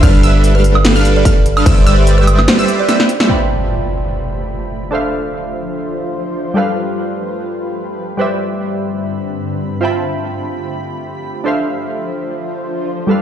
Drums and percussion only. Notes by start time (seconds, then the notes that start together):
0.03 kick, closed hi-hat, crash
0.24 closed hi-hat
0.44 closed hi-hat
0.64 closed hi-hat
0.75 high woodblock
0.85 snare, closed hi-hat, crash
1.05 closed hi-hat
1.25 kick, closed hi-hat
1.46 closed hi-hat
1.57 high woodblock
1.66 kick, closed hi-hat, crash
1.87 closed hi-hat
2.07 closed hi-hat
2.27 closed hi-hat, high woodblock
2.39 snare, high woodblock
2.48 snare, closed hi-hat, crash
2.68 closed hi-hat
2.89 snare, closed hi-hat
3.00 snare
3.09 closed hi-hat
3.20 snare